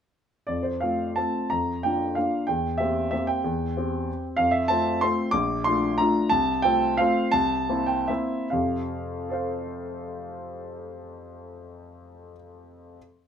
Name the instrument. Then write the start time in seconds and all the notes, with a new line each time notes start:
grand piano
0.47 F2 D5
0.63 C5
0.80 A3 C4 F4 F5
1.16 A3 C4 F4 A5
1.50 F2 A#5
1.83 A#3 D4 F4 G5
2.15 A#3 D4 F4 F5
2.47 E2 G5
2.78 A#3 C4 G4 E5
3.11 A#3 C4 G4 E5
3.27 G5
3.44 E2
3.77 C4 G4
4.37 F2 F5
4.51 E5
4.68 A3 C4 F4 A5
5.01 A3 C4 F4 C6
5.31 A#1 D6
5.64 A3 D4 F4 C6
5.98 A3 D4 F4 A#5
6.29 C2 A5
6.62 A3 C4 F4 G5
6.97 A3 C4 F4 F5
7.32 C2 A5
7.69 A#3 C4 E4
7.86 G5
8.08 A#3 C4 E4 E5
8.50 F2 C3 F5
9.29 A4 C5 F5